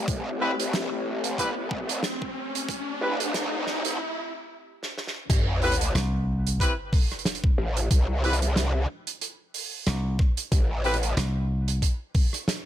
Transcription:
Already playing: A3 C4 G4, riser
0.08 A1, kick, closed hi-hat
0.41 C4 E4 G4 B4
0.59 A1, closed hi-hat
0.73 snare, closed hi-hat
0.92 A1
1.24 closed hi-hat
1.38 C4 E4 G4 B4, kick, closed hi-hat
1.57 A1
1.71 kick
1.89 cross-stick, closed hi-hat
2.03 snare, closed hi-hat
2.22 kick
2.55 closed hi-hat
2.69 kick, closed hi-hat
3.01 A1 C4 E4 G4 B4
3.20 closed hi-hat
3.34 snare, closed hi-hat
3.66 D2, snare
3.85 C2, closed hi-hat
4.83 snare
4.98 snare
5.07 snare
5.30 A1, kick, closed hi-hat, crash, sub drop
5.62 C4 E4 G4 B4, open hi-hat
5.72 closed hi-hat
5.81 closed hi-hat
5.95 C2, snare, closed hi-hat
6.47 closed hi-hat
6.60 C4 E4 G4 B4, kick, closed hi-hat
6.93 kick, open hi-hat
7.12 cross-stick, closed hi-hat
7.19 closed hi-hat
7.25 snare, closed hi-hat
7.35 closed hi-hat
7.44 kick
7.58 A1
7.77 closed hi-hat
7.91 C2, kick, closed hi-hat
8.24 C4 E4 G4 B4, open hi-hat
8.33 closed hi-hat
8.42 closed hi-hat
8.56 snare, closed hi-hat
9.07 closed hi-hat
9.21 closed hi-hat
9.54 open hi-hat
9.87 C2, snare, closed hi-hat
10.19 kick, cross-stick
10.37 closed hi-hat
10.52 A1, kick, closed hi-hat
10.84 C4 E4 G4 B4, open hi-hat
10.94 closed hi-hat
11.03 closed hi-hat
11.17 C2, snare, closed hi-hat
11.68 closed hi-hat
11.82 kick, closed hi-hat
12.14 kick, open hi-hat
12.33 cross-stick, closed hi-hat
12.48 snare, closed hi-hat

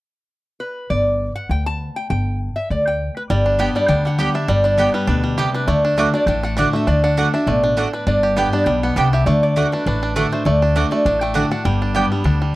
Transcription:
0.60 B4
0.90 G1 D5
1.35 F#5
1.49 D2 G5
1.66 A5
1.96 G5
2.10 G1 G5
2.56 E5
2.70 D2 D5
2.87 G5
3.17 B4
3.30 G1 G2 G3 D5
3.46 D4
3.59 G3 B3 D4 G4 D5 G5
3.75 G3 D4 G4 D5
3.88 D2 D3 D4 G5
4.05 G3 F#5
4.19 G3 B3 D4 G4 D5 G5
4.34 D4 G4 E5
4.48 G1 G2 G3 D5
4.64 D4 D5
4.77 G3 B3 D4 G4 D5 G5
4.94 G3 B4
5.07 D2 B2 D4 B4
5.24 G3
5.38 C3 B3 G4 D5 G5
5.54 D4 B4
5.67 D2 D3 A3 D5
5.85 D4
5.97 D3 A3 D4 F#4 D5 F#5
6.14 D4 F#4 D5
6.26 A1 A2 D4 G5
6.43 D4 F#5
6.57 D3 A3 D4 F#4 D5 F#5
6.73 A3 D4 F#4 E5
6.87 D2 D3 D4 D5
7.04 D4 F#5
7.17 D3 A3 D4 F#4 D5 F#5
7.33 D4 F#4 E5
7.47 A1 B2 A3 D5
7.64 D4
7.77 A2 A3 D4 F#4 D5 F#5
7.93 D4 B4
8.07 G1 G2 D4 D5
8.23 G4
8.36 G3 B3 D4 G4 D5 G5
8.52 D4 G4 D5
8.66 B1 B2 G3 G5
8.83 B3 F#5
8.96 C2 C3 B3 D4 G4 D5 G5
9.13 G4 E5
9.26 D2 D3 A3 D5
9.43 D5
9.56 D3 A3 D4 F#4 D5 F#5
9.72 D4 F#4 B4
9.86 A1 A2 D4 B4
10.03 D4
10.15 D3 A3 D4 F#4 D5 F#5
10.32 A3 D4 F#4 C5
10.45 D2 D3 A3 D5
10.62 D4
10.76 D3 A3 D4 F#4 D5 F#5
10.91 A3 D4 F#4 D5
11.05 A1 A2 D4
11.21 A3 G5
11.34 D3 A3 D4 F#4 D5 F#5
11.51 D4 F#4 F#5
11.65 G1 G2 G3 G5
11.82 D4
11.95 G3 B3 D4 G4 D5 G5
12.11 G3 D4 G4
12.24 D2 D3 D4
12.42 G3

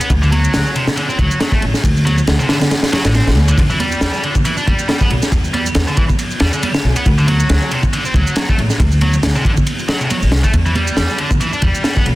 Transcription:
0.00 B3, ride, shaker
0.10 D2, kick, ride, shaker
0.22 D3, shaker
0.32 F#3, ride, high conga
0.44 shaker
0.53 D2, snare, ride, shaker
0.66 shaker
0.75 C3, ride
0.87 snare, ride, high conga, shaker
0.97 D3, ride, shaker
1.09 C4, shaker
1.19 D2 F#3, kick, ride
1.31 shaker
1.40 F#3, snare, ride, high conga, shaker
1.52 A3, kick, shaker
1.62 A1, ride
1.74 snare, shaker
1.84 D2, kick, ride, shaker
1.97 shaker
2.06 F#3, ride, high conga
2.18 shaker
2.27 D2, snare, ride, shaker
2.40 C3, shaker
2.49 D3, snare, ride
2.61 snare, ride, high conga, shaker
2.71 snare, ride, shaker
2.83 snare, ride, shaker
2.93 F#3, snare, ride
3.05 A1 D3, snare, ride, shaker
3.14 C4, snare, ride, high conga, shaker
3.27 A1, snare, ride, shaker
3.36 D2
3.48 D3, shaker
3.58 E2, kick, ride, shaker
3.70 E3, shaker
3.80 G3, ride, high conga
3.92 shaker
4.01 E2, snare, ride, shaker
4.14 shaker
4.23 D3, ride
4.35 kick, high conga, shaker
4.45 E3, ride, shaker
4.57 D4, shaker
4.67 E2 G3, kick, ride
4.79 shaker
4.88 G3, snare, ride, high conga, shaker
5.01 B3, kick, shaker
5.10 B1, ride
5.22 snare, shaker
5.32 E2, kick, ride, shaker
5.44 shaker
5.54 G3, ride, high conga
5.66 shaker
5.75 E2, snare, ride, shaker
5.88 D3, shaker
5.97 E3, kick, ride
6.09 kick, high conga, shaker
6.19 ride, shaker
6.31 shaker
6.40 E2 G3, snare, ride
6.53 D3, shaker
6.62 G3, ride, high conga, shaker
6.74 snare, ride, shaker
6.84 B1
6.96 B3, ride, shaker
7.06 D2, kick, ride, shaker
7.18 D3, shaker
7.27 F#3, ride, high conga
7.40 shaker
7.49 D2, snare, ride, shaker
7.62 shaker
7.71 C3, ride
7.83 kick, high conga, shaker
7.93 D3, ride, shaker
8.05 C4, shaker
8.14 D2 F#3, kick, ride
8.27 shaker
8.36 F#3, snare, ride, high conga, shaker
8.49 A3, kick, shaker
8.58 A1, ride
8.70 snare, shaker
8.80 D2, kick, ride, shaker
8.92 shaker
9.01 F#3, ride, high conga
9.13 shaker
9.23 D2, snare, ride, shaker
9.35 C3, shaker
9.45 D3, kick, ride
9.57 kick, high conga, shaker
9.67 ride, shaker
9.79 shaker
9.88 F#3, snare, ride
10.01 C3, shaker
10.10 F#3, ride, high conga, shaker
10.22 A1, shaker
10.32 C2, snare, ride
10.44 A3, kick, shaker
10.53 E2, kick, ride, shaker
10.66 E3, shaker
10.75 G3, ride, high conga
10.87 shaker
10.97 E2, snare, ride, shaker
11.09 shaker
11.18 D3, ride
11.31 kick, high conga, shaker
11.41 E3, ride, shaker
11.53 D4, shaker
11.62 E2 G3, kick, ride
11.75 shaker
11.84 G3, snare, ride, high conga, shaker
11.96 B3, kick, shaker
12.06 B1, ride

